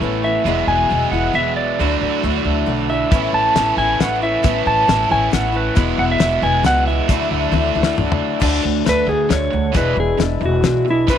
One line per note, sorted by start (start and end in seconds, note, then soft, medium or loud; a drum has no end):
0.00 0.36 A1 medium
0.00 0.44 A2 medium
0.00 0.45 E3 medium
0.00 0.23 E3 medium
0.00 0.44 A3 loud
0.00 0.24 B3 medium
0.00 0.45 C#4 loud
0.00 0.24 C#4 medium
0.00 0.45 A4 loud
0.00 0.43 B4 medium
0.00 0.28 C#5 medium
0.00 0.44 A5 medium
0.00 0.44 C#6 medium
0.05 0.22 E4 medium
0.23 0.46 B3 soft
0.23 0.47 C#4 soft
0.23 0.45 E4 soft
0.23 0.69 E5 medium
0.45 0.63 E1 medium
0.45 0.90 E2 medium
0.45 0.90 B2 medium
0.45 1.78 E3 medium
0.45 0.90 F#3 medium
0.45 0.90 G#3 medium
0.45 0.91 B3 medium
0.45 0.92 E4 medium
0.45 1.77 G#4 loud
0.45 1.79 G#4 medium
0.45 1.78 E6 medium
0.49 1.78 F#5 medium
0.67 0.85 E1 medium
0.67 1.09 G#5 loud
0.90 1.08 E1 loud
0.90 1.12 F#3 medium
0.90 1.13 G#3 medium
0.90 1.12 B3 medium
0.90 1.12 E4 medium
1.11 1.29 E1 medium
1.11 1.32 F#3 soft
1.11 1.33 G#3 soft
1.11 1.33 B3 soft
1.11 1.34 E4 medium
1.11 1.34 F#5 medium
1.33 1.69 E1 medium
1.33 1.78 F#3 medium
1.33 1.78 G#3 medium
1.33 1.79 B3 medium
1.33 1.81 E4 medium
1.33 1.56 E5 medium
1.56 2.93 D5 medium
1.79 1.96 D2 medium
1.79 2.24 D3 medium
1.79 2.22 F#3 medium
1.79 2.24 A3 medium
1.79 2.24 D4 medium
1.79 2.25 E4 medium
1.79 3.11 F#4 loud
1.79 3.11 D5 medium
1.79 3.11 F#5 medium
1.79 3.11 E6 medium
2.01 2.18 D2 medium
2.23 2.41 D2 loud
2.23 2.65 F#3 medium
2.23 2.66 A3 medium
2.23 2.66 D4 medium
2.23 2.69 E4 medium
2.45 2.62 D2 medium
2.66 3.02 B1 medium
2.66 2.89 F#3 medium
2.66 2.89 A3 medium
2.66 2.89 D4 medium
2.66 2.88 E4 medium
2.89 3.13 A3 soft
2.89 3.13 D4 soft
2.89 3.12 E4 medium
2.89 3.35 E5 medium
3.11 3.29 A1 medium
3.11 3.56 A2 medium
3.11 3.56 E3 medium
3.11 4.43 A3 medium
3.11 3.56 B3 medium
3.11 3.56 C#4 medium
3.11 3.57 E4 medium
3.11 5.75 B4 medium
3.11 5.75 A5 medium
3.11 5.75 C#6 medium
3.11 kick loud
3.11 closed hi-hat medium
3.33 3.51 A1 medium
3.33 3.78 A5 loud
3.56 3.73 A1 medium
3.56 3.78 E3 medium
3.56 3.78 B3 medium
3.56 3.78 C#4 medium
3.56 3.77 E4 medium
3.56 snare medium
3.56 closed hi-hat medium
3.77 3.95 A1 medium
3.77 4.01 C#4 soft
3.77 4.00 E4 soft
3.77 4.01 G#5 medium
3.81 4.00 B3 soft
4.00 4.35 A1 medium
4.00 4.22 E3 medium
4.00 4.23 B3 medium
4.00 4.23 C#4 medium
4.00 4.21 E4 medium
4.00 4.23 F#5 medium
4.00 snare medium
4.00 closed hi-hat medium
4.22 4.43 B3 soft
4.22 4.43 C#4 soft
4.22 4.44 E4 soft
4.22 4.68 E5 medium
4.43 4.62 A1 loud
4.43 4.88 A2 medium
4.43 4.87 E3 medium
4.43 5.76 A3 loud
4.43 4.88 B3 medium
4.43 4.89 C#4 medium
4.43 4.90 E4 medium
4.43 kick loud
4.43 closed hi-hat medium
4.66 4.84 A1 medium
4.66 5.11 A5 loud
4.88 5.06 A1 loud
4.88 5.10 E3 medium
4.88 5.10 B3 medium
4.88 5.09 C#4 medium
4.88 5.08 E4 medium
4.88 snare medium
4.88 closed hi-hat medium
5.09 5.28 A1 medium
5.09 5.30 B3 soft
5.09 5.31 C#4 soft
5.09 5.32 E4 soft
5.09 5.34 G#5 medium
5.31 5.68 A1 medium
5.31 5.54 E3 medium
5.31 5.53 B3 medium
5.31 5.52 C#4 medium
5.31 5.51 E4 medium
5.31 5.56 F#5 medium
5.31 snare medium
5.31 closed hi-hat medium
5.52 5.75 B3 soft
5.52 5.76 C#4 soft
5.52 5.76 E4 soft
5.56 6.01 B4 medium
5.75 5.94 E1 medium
5.75 6.20 E2 medium
5.75 6.21 B2 medium
5.75 7.07 E3 loud
5.75 6.18 F#3 medium
5.75 6.18 G#3 medium
5.75 6.19 B3 loud
5.75 6.20 E4 medium
5.75 7.09 G#4 medium
5.75 8.40 F#5 medium
5.75 8.40 E6 medium
5.75 kick loud
5.75 closed hi-hat medium
5.98 6.16 E1 medium
5.98 6.04 F#5 loud
6.12 6.45 E5 loud
6.18 6.38 E1 medium
6.18 6.42 F#3 medium
6.18 6.42 G#3 medium
6.18 6.42 B3 medium
6.18 6.41 E4 medium
6.18 snare medium
6.18 closed hi-hat medium
6.42 6.60 E1 loud
6.42 6.62 F#3 soft
6.42 6.64 G#3 soft
6.42 6.65 B3 soft
6.42 6.65 E4 soft
6.42 6.66 G#5 medium
6.63 6.99 C#2 medium
6.63 6.87 F#3 medium
6.63 6.87 G#3 medium
6.63 6.87 B3 medium
6.63 6.86 E4 medium
6.63 6.87 F#5 loud
6.63 snare medium
6.63 closed hi-hat medium
6.87 7.08 F#3 soft
6.87 7.10 G#3 soft
6.87 7.10 B3 soft
6.87 7.10 E4 soft
6.87 7.94 E5 medium
7.09 7.27 D2 medium
7.09 7.54 D3 medium
7.09 7.51 F#3 medium
7.09 7.52 A3 medium
7.09 7.52 D4 medium
7.09 7.54 E4 loud
7.09 8.41 F#4 loud
7.09 8.41 D5 medium
7.09 kick loud
7.09 closed hi-hat medium
7.31 7.49 D2 medium
7.52 7.70 D2 loud
7.52 7.75 F#3 medium
7.52 7.76 A3 medium
7.52 7.75 D4 medium
7.52 7.74 E4 medium
7.52 high tom medium
7.75 7.93 D2 medium
7.75 7.96 A3 soft
7.75 7.97 D4 medium
7.75 7.98 E4 medium
7.83 snare medium
7.96 8.34 D2 medium
7.96 8.39 F#3 medium
7.96 8.40 A3 medium
7.96 8.40 D4 medium
7.96 8.42 E4 medium
7.96 mid tom medium
8.12 floor tom loud
8.40 8.62 D2 medium
8.40 8.83 D3 medium
8.40 8.84 A3 loud
8.40 8.86 D4 loud
8.40 8.85 F#4 medium
8.40 9.74 A4 medium
8.40 9.74 F#5 medium
8.40 kick loud
8.40 crash loud
8.64 8.84 D2 medium
8.64 8.84 D3 medium
8.64 8.84 A3 medium
8.84 9.06 D2 loud
8.84 9.08 D3 medium
8.84 9.08 A3 medium
8.84 9.08 D4 medium
8.84 9.07 F#4 medium
8.84 snare medium
8.84 closed hi-hat medium
8.89 9.10 B4 medium
9.07 9.27 D2 medium
9.07 9.28 D3 medium
9.07 9.29 A3 soft
9.07 9.30 D4 soft
9.07 9.30 F#4 soft
9.07 9.31 G#4 medium
9.29 9.50 D2 medium
9.29 9.52 D3 medium
9.29 9.53 A3 soft
9.29 9.52 D4 medium
9.29 9.51 F#4 medium
9.29 9.75 C#5 medium
9.29 snare medium
9.29 closed hi-hat medium
9.51 9.73 D2 medium
9.51 9.72 D3 medium
9.51 9.74 A3 soft
9.51 9.74 D4 soft
9.51 9.75 F#4 soft
9.73 9.95 E1 medium
9.73 10.19 E2 medium
9.73 10.19 B2 medium
9.73 10.18 E3 medium
9.73 10.18 G#3 medium
9.73 10.20 D4 medium
9.73 10.21 E4 medium
9.73 11.07 G#4 medium
9.73 11.18 E5 medium
9.73 kick loud
9.73 closed hi-hat medium
9.77 9.98 B4 medium
9.95 10.16 E1 medium
9.95 10.17 E2 medium
9.95 10.17 B2 medium
10.00 10.20 G#4 medium
10.18 10.39 E1 medium
10.18 10.39 E2 medium
10.18 10.39 B2 medium
10.18 10.41 E3 medium
10.18 10.42 G#3 medium
10.18 10.41 D4 medium
10.18 10.41 E4 medium
10.18 snare medium
10.18 closed hi-hat medium
10.41 10.61 E1 medium
10.41 10.62 E2 medium
10.41 10.62 B2 medium
10.41 10.62 E3 soft
10.41 10.63 G#3 soft
10.41 10.64 D4 soft
10.41 10.64 E4 soft
10.45 10.87 F#4 medium
10.62 11.08 B1 medium
10.62 10.83 E2 medium
10.62 10.84 B2 medium
10.62 10.86 E3 medium
10.62 10.87 G#3 soft
10.62 10.86 D4 medium
10.62 10.86 E4 medium
10.62 snare medium
10.62 closed hi-hat medium
10.85 11.06 E2 medium
10.85 11.06 B2 medium
10.85 11.10 G#3 soft
10.85 11.09 D4 soft
10.85 11.09 E4 soft
10.89 11.08 E3 soft
10.89 11.10 E4 medium
11.08 11.18 C2 loud
11.08 11.18 C3 medium
11.08 11.18 E3 medium
11.08 11.18 G3 medium
11.08 11.18 D4 medium
11.08 11.18 E4 medium
11.08 11.18 B4 medium
11.08 11.18 C5 medium
11.08 kick loud
11.08 closed hi-hat medium